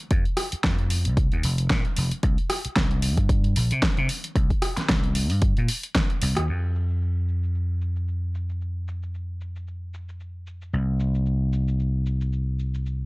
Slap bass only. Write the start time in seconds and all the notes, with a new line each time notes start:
0.11 F2
0.53 muted slap bass stroke
0.64 F2
1.06 C2
1.32 D#2
1.44 F1
1.70 A#2
1.98 F1
2.23 C2
2.65 muted slap bass stroke
2.76 C2
3.18 G2
3.57 A#1
3.72 C3
3.98 C3
4.36 C2
4.78 muted slap bass stroke
4.89 C2
5.31 G2
5.58 A#2
6.22 C2
6.38 D#2
6.49 F2
10.73 C2